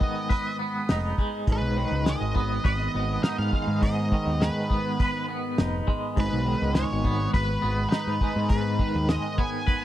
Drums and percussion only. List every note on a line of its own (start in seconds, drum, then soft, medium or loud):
0.01 kick medium
0.30 kick medium
0.30 open hi-hat soft
0.89 snare medium
0.89 open hi-hat soft
1.18 kick medium
1.47 kick loud
1.47 open hi-hat medium
2.06 snare medium
2.06 open hi-hat medium
2.36 kick medium
2.65 kick loud
2.65 open hi-hat soft
3.24 snare medium
3.24 open hi-hat soft
3.53 kick medium
3.83 kick medium
3.83 open hi-hat medium
4.12 kick medium
4.41 snare medium
4.41 open hi-hat soft
4.71 kick medium
5.00 kick medium
5.00 open hi-hat soft
5.58 snare loud
5.58 open hi-hat soft
5.88 kick medium
6.17 kick loud
6.17 open hi-hat medium
6.75 snare medium
6.75 open hi-hat soft
7.05 kick medium
7.34 kick loud
7.34 open hi-hat soft
7.92 snare loud
7.92 open hi-hat soft
8.21 kick medium
8.49 kick loud
8.49 open hi-hat soft
8.79 kick medium
9.09 snare loud
9.09 open hi-hat soft
9.38 kick medium
9.68 kick loud
9.68 open hi-hat soft